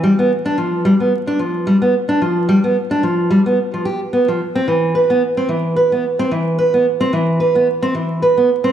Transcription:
X:1
M:4/4
L:1/16
Q:"Swing 16ths" 1/4=110
K:Gmix
V:1 name="Steel-string acoustic guitar"
G, B, z D F,2 G, B, z D F,2 G, B, z D | F,2 G, B, z D F,2 G, B, z F, G z B, F, | z C E,2 B B, z C E,2 B B, z C E,2 | B B, z C E,2 B B, z C E,2 B B, z C |]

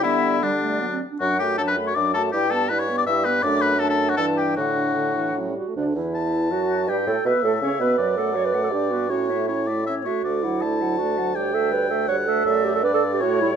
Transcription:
X:1
M:3/4
L:1/16
Q:1/4=161
K:G
V:1 name="Flute"
e4 d6 z2 | [K:D] f2 g2 a b2 c' d'2 a2 | g2 a2 b c'2 d' e'2 b2 | d'2 b2 a a2 f a2 g2 |
f8 z4 | D2 E6 F4 | G2 A2 B2 A2 c2 B2 | d2 f2 d2 f2 d2 B2 |
c2 e2 c2 e2 c2 e2 | d2 f2 d2 f2 d2 f2 | c2 e2 c2 e2 c2 e2 | d4 d4 c4 |]
V:2 name="Oboe"
E4 D6 z2 | [K:D] F2 G2 A B2 c d2 A2 | G2 A2 B c2 d e2 B2 | d2 B2 A A2 F A2 G2 |
F8 z4 | z4 a8 | g4 e8 | d12 |
c4 c2 d2 e2 c2 | d4 a8 | g8 f4 | e4 d4 c4 |]
V:3 name="Clarinet"
B,4 G,2 A,2 B, C2 D | [K:D] D2 F2 D2 F2 D2 F2 | E2 G2 E2 G2 E2 G2 | D4 D4 D4 |
D8 C2 F2 | D2 E6 F4 | G2 A2 B2 A2 c2 B2- | B2 A2 c B2 A G2 F2 |
F4 E4 z2 F2- | F2 E6 F4 | G2 A2 B2 A2 c2 A2- | A2 G A B A2 G F2 E2 |]
V:4 name="French horn"
G,4 G,4 F,2 z2 | [K:D] F,2 A,2 F,2 A,2 F,2 A,2 | G,2 B,2 G,2 B,2 G,2 B,2 | A,4 A,4 E,4 |
D,4 D,2 E,2 F, G,2 A, | D,2 E,6 F,4 | G,2 A,2 B,2 A,2 C2 B,2 | F,2 A,2 F,2 A,2 D2 B,2 |
C2 A,2 C2 A,2 C2 A,2 | A,2 F,2 A,2 F,2 A,2 F,2 | G,2 A,2 G,2 A,2 G,2 A,2 | A,4 D4 A,2 G,2 |]
V:5 name="Bassoon" clef=bass
D,8- D,2 z2 | [K:D] F,,4 F,,4 F,,4 | G,,4 G,,4 G,,4 | F,,8 G,,4 |
A,,8- A,,2 z2 | D,,2 E,,6 F,,4 | G,,2 A,,2 B,,2 A,,2 C,2 B,,2 | F,,8 G,,4 |
A,,8- A,,2 z2 | D,,12- | D,,12 | F,,4 G,,4 A,,4 |]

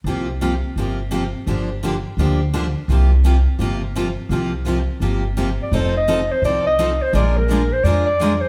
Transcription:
X:1
M:4/4
L:1/16
Q:"Swing" 1/4=169
K:Cdor
V:1 name="Clarinet"
z16 | z16 | z16 | z12 z2 d2 |
c2 e4 c2 d2 e4 c2 | d2 B4 c2 d2 d4 c2 |]
V:2 name="Steel-string acoustic guitar"
[C,F,B,FG]2 z2 [C,F,B,FG] z3 [C,F,B,FG]2 z2 [C,F,B,FG] z3 | [D,F,B,DG]2 z2 [D,F,B,DG] z3 [D,F,B,DG]2 z2 [D,F,B,DG] z3 | [C,F,B,FG]2 z2 [C,F,B,FG] z3 [C,F,B,FG]2 z2 [C,F,B,FG] z3 | [C,F,B,FG]2 z2 [C,F,B,FG] z3 [C,F,B,FG]2 z2 [C,F,B,FG] z3 |
[F,CEA]2 z2 [F,CEA] z3 [F,CEA]2 z2 [F,CEA] z3 | [F,_A,DFB]2 z2 [F,A,DFB] z3 [F,A,DFB]2 z2 [F,A,DFB] z3 |]
V:3 name="Steel-string acoustic guitar"
[C,F,B,FG]2 z2 [C,F,B,FG] z3 [C,F,B,FG]2 z2 [C,F,B,FG] z3 | [D,F,B,DG]2 z2 [D,F,B,DG] z3 [D,F,B,DG]2 z2 [D,F,B,DG] z3 | [C,F,B,FG]2 z2 [C,F,B,FG] z3 [C,F,B,FG]2 z2 [C,F,B,FG] z3 | [C,F,B,FG]2 z2 [C,F,B,FG] z3 [C,F,B,FG]2 z2 [C,F,B,FG] z3 |
[F,CEA]2 z2 [F,CEA] z3 [F,CEA]2 z2 [F,CEA] z3 | [F,_A,DFB]2 z2 [F,A,DFB] z3 [F,A,DFB]2 z2 [F,A,DFB] z3 |]
V:4 name="Upright bass" clef=bass
C,,8 G,,,8 | G,,,8 D,,8 | C,,8 G,,,8 | C,,8 G,,,8 |
F,,,8 C,,8 | B,,,8 F,,8 |]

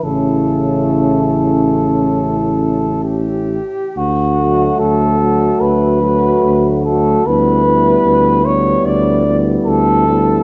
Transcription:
X:1
M:4/4
L:1/8
Q:1/4=72
K:D
V:1 name="Flugelhorn"
A6 G2 | F2 A2 B3 A | B3 c d z A2 |]
V:2 name="French horn section"
C6- C z | z F2 F2 F2 F | E E2 E2 E2 E |]
V:3 name="Euphonium"
E6- E z | z A,2 A,2 A,2 A, | B, B,2 B,2 B,2 B, |]
V:4 name="Trombone" clef=bass
C,6 z2 | z F,2 F,2 F,2 F, | G, G,2 G,2 G,2 G, |]
V:5 name="Tuba" clef=bass
A,,,6- A,,, z | D,,2 D,,2 D,,2 D,,2 | D,,2 D,,2 D,,2 D,,2 |]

